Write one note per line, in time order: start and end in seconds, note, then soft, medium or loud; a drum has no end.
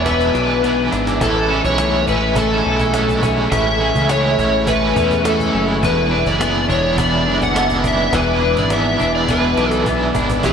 0.00 0.32 E1 medium
0.00 0.34 E2 medium
0.00 0.33 D4 medium
0.00 1.18 B4 medium
0.00 1.17 E5 medium
0.00 1.18 G#5 medium
0.00 1.18 D6 medium
0.04 0.34 B2 medium
0.04 0.34 E3 medium
0.04 0.34 G#3 medium
0.04 0.62 B3 medium
0.04 0.33 D4 medium
0.04 0.31 E4 medium
0.04 0.88 B4 medium
0.04 cajon bass loud
0.04 cajon slap medium
0.21 cajon slap medium
0.32 0.89 B1 medium
0.32 0.63 G#3 soft
0.32 0.63 D4 medium
0.32 0.62 E4 medium
0.32 cajon slap medium
0.37 0.61 E3 soft
0.62 0.92 E3 medium
0.62 0.92 G#3 medium
0.62 1.27 B3 medium
0.62 0.92 D4 medium
0.62 cajon slap medium
0.67 0.90 E4 medium
0.92 1.20 G#1 medium
0.92 1.22 D4 medium
0.92 1.21 E4 medium
0.92 cajon slap loud
0.96 1.21 E3 medium
0.96 1.22 G#3 medium
1.07 cajon slap medium
1.21 1.62 A1 loud
1.21 1.50 A2 medium
1.21 1.50 E3 loud
1.21 1.51 G#3 medium
1.21 1.51 C#4 loud
1.21 1.48 E4 loud
1.21 1.65 A4 medium
1.21 5.79 A4 medium
1.21 5.79 E5 medium
1.21 10.41 G#5 medium
1.21 5.79 C#6 medium
1.21 cajon bass loud
1.49 1.80 C#4 medium
1.49 1.78 E4 medium
1.55 1.79 G#3 soft
1.65 2.06 B1 medium
1.65 2.08 C#5 loud
1.65 cajon bass medium
1.78 2.07 E3 medium
1.78 2.09 G#3 medium
1.78 2.35 A3 medium
1.78 cajon slap loud
1.82 2.08 C#4 medium
1.82 2.06 E4 medium
2.07 2.63 A1 loud
2.07 2.37 C#4 medium
2.07 2.36 E4 medium
2.07 2.38 B4 medium
2.07 cajon bass medium
2.12 2.36 G#3 soft
2.35 2.65 A2 medium
2.35 2.65 E3 medium
2.35 2.66 G#3 medium
2.35 2.93 A3 medium
2.35 2.66 C#4 medium
2.35 2.63 E4 medium
2.35 3.20 A4 medium
2.35 cajon bass medium
2.35 cajon bass loud
2.64 3.48 B1 medium
2.64 2.95 C#4 medium
2.64 2.94 E4 medium
2.70 2.93 G#3 soft
2.79 cajon bass medium
2.92 3.22 E3 medium
2.92 3.23 G#3 medium
2.92 4.08 A3 medium
2.92 cajon slap loud
2.96 3.23 C#4 medium
2.96 3.20 E4 medium
3.09 cajon bass medium
3.21 3.52 C#4 medium
3.21 3.51 E4 medium
3.21 cajon bass loud
3.26 3.51 G#3 medium
3.50 3.93 A1 loud
3.50 3.80 A2 loud
3.50 3.81 E3 medium
3.50 3.81 G#3 loud
3.50 3.80 C#4 loud
3.50 3.77 E4 loud
3.50 4.11 E5 loud
3.50 cajon bass loud
3.78 4.10 C#4 soft
3.78 4.08 E4 medium
3.84 4.09 G#3 soft
3.95 4.36 C#2 loud
3.95 cajon bass medium
4.08 4.37 E3 medium
4.08 4.39 G#3 medium
4.08 4.65 A3 medium
4.08 4.69 C#5 medium
4.08 cajon slap loud
4.12 4.38 C#4 medium
4.12 4.36 E4 medium
4.37 4.93 A1 medium
4.37 4.68 C#4 medium
4.37 4.67 E4 medium
4.37 cajon bass medium
4.42 4.67 G#3 soft
4.66 4.96 A2 medium
4.66 4.96 E3 medium
4.66 4.97 G#3 medium
4.66 5.23 A3 medium
4.66 4.97 C#4 medium
4.66 4.94 E4 medium
4.66 5.25 B4 loud
4.66 cajon bass medium
4.66 cajon bass loud
4.95 5.51 E2 medium
4.95 5.26 C#4 medium
4.95 5.25 E4 medium
4.95 cajon bass loud
5.01 5.24 G#3 soft
5.11 cajon bass medium
5.24 5.53 E3 medium
5.24 5.54 G#3 medium
5.24 5.88 A3 medium
5.24 5.54 C#4 medium
5.24 5.65 A4 medium
5.24 cajon slap loud
5.29 5.51 E4 medium
5.40 cajon bass medium
5.52 5.82 F#1 loud
5.52 5.83 C#4 medium
5.52 5.82 E4 medium
5.58 5.83 G#3 medium
5.81 6.24 E1 loud
5.81 6.11 E2 medium
5.81 6.11 B2 medium
5.81 6.12 E3 medium
5.81 6.12 G#3 medium
5.81 6.11 D4 medium
5.81 6.09 E4 loud
5.81 10.40 B4 medium
5.81 6.28 B4 loud
5.81 10.53 E5 medium
5.81 10.41 D6 medium
5.81 cajon bass loud
6.10 6.41 D4 soft
6.10 6.40 E4 medium
6.14 6.38 E3 soft
6.14 6.40 G#3 medium
6.26 6.67 F#1 medium
6.26 6.67 D5 loud
6.26 cajon bass medium
6.39 6.69 E3 medium
6.39 6.70 G#3 medium
6.39 6.95 B3 medium
6.39 6.69 D4 medium
6.39 cajon slap loud
6.45 6.66 E4 medium
6.67 7.28 E1 loud
6.67 6.97 D4 medium
6.67 6.97 E4 medium
6.67 6.99 C#5 loud
6.67 cajon bass medium
6.71 6.96 E3 medium
6.71 6.96 G#3 medium
6.95 7.26 E2 medium
6.95 7.26 B2 medium
6.95 7.27 E3 medium
6.95 7.27 G#3 medium
6.95 7.53 B3 medium
6.95 7.26 D4 medium
6.95 7.23 E4 loud
6.95 cajon bass medium
6.95 cajon bass loud
7.00 7.43 D5 loud
7.24 8.09 F#1 medium
7.24 7.54 G#3 soft
7.24 7.56 D4 medium
7.24 7.55 E4 medium
7.30 7.52 E3 soft
7.42 7.87 F#5 loud
7.42 cajon bass medium
7.53 7.83 E3 medium
7.53 7.84 G#3 medium
7.53 8.69 B3 medium
7.53 cajon slap loud
7.57 7.83 D4 medium
7.57 7.81 E4 medium
7.70 cajon bass medium
7.82 8.13 G#3 medium
7.82 8.13 D4 medium
7.82 8.12 E4 medium
7.82 cajon bass loud
7.87 8.12 E3 soft
7.87 8.16 E5 loud
8.12 8.58 E1 loud
8.12 8.41 E2 medium
8.12 8.42 B2 medium
8.12 8.42 E3 medium
8.12 8.43 G#3 loud
8.12 8.41 D4 loud
8.12 8.39 E4 loud
8.12 8.54 B4 loud
8.12 cajon bass loud
8.41 8.69 G#3 medium
8.41 8.71 D4 medium
8.41 8.70 E4 medium
8.46 8.67 E3 soft
8.56 8.98 G#1 medium
8.56 8.72 D5 loud
8.56 cajon bass medium
8.68 8.98 E3 medium
8.68 8.99 G#3 medium
8.68 9.27 B3 medium
8.68 cajon slap loud
8.72 8.98 D4 medium
8.72 8.95 E4 medium
8.72 9.15 E5 loud
8.97 9.55 E1 medium
8.97 9.28 G#3 medium
8.97 9.29 D4 medium
8.97 9.27 E4 medium
8.97 cajon bass medium
9.03 9.28 E3 medium
9.15 9.30 D5 medium
9.27 9.57 E2 medium
9.27 9.57 B2 medium
9.27 9.58 E3 medium
9.27 9.58 G#3 medium
9.27 9.86 B3 medium
9.27 9.57 D4 medium
9.27 9.54 E4 medium
9.27 9.71 B4 medium
9.27 cajon bass loud
9.27 cajon slap medium
9.56 10.12 B1 medium
9.56 9.87 D4 soft
9.56 9.86 E4 medium
9.56 cajon slap medium
9.60 9.83 E3 soft
9.60 9.85 G#3 soft
9.71 9.83 A4 medium
9.71 cajon slap medium
9.84 10.14 E3 medium
9.84 10.15 G#3 medium
9.84 10.50 B3 medium
9.84 10.14 D4 medium
9.84 cajon bass medium
9.90 10.12 E4 medium
10.13 10.43 G#1 medium
10.13 10.43 G#3 medium
10.13 10.44 D4 medium
10.13 10.43 E4 medium
10.13 cajon bass loud
10.18 10.42 E3 medium
10.30 cajon bass loud
10.42 10.53 A1 loud
10.42 10.53 A2 medium
10.42 10.53 E3 medium
10.42 10.53 G#3 medium
10.42 10.53 C#4 medium
10.42 10.53 A4 medium
10.42 cajon bass loud
10.46 10.53 E4 medium